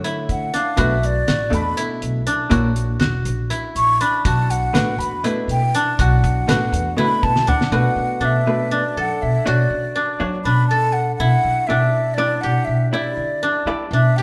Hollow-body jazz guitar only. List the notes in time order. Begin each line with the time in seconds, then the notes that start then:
Already playing: D3 A3 F#4 C#5
0.77 B2 A3 D4 B4
1.50 B2 A3 D4 A4
2.50 A#2 A#3 E4 C#5
4.73 B2 A3 D4 B4
5.24 B2 A3 D4 B4
6.48 B2 A3 D4 B4
6.97 B2 A3 D4 B4
7.72 B2 A3 D4 B4
8.47 B2 A3 D4 B4
9.46 D4 F#4 C#5
10.20 D4 F#4 C#5
11.69 E4 G4 D5
12.18 E4 G4 D5
12.93 E4 G4 D5
13.67 E4 G4 D5